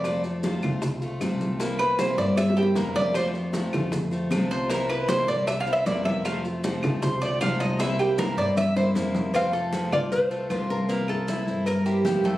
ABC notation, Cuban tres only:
X:1
M:4/4
L:1/8
Q:1/4=155
K:F
V:1 name="Cuban tres"
d z6 z | z =B c d e G _B d | c z6 c | B =B c d (3e f e d e |
f z3 c d f _e | e G B d e c z2 | C A2 F2 A, F2 | B,2 E2 B G2 A, |]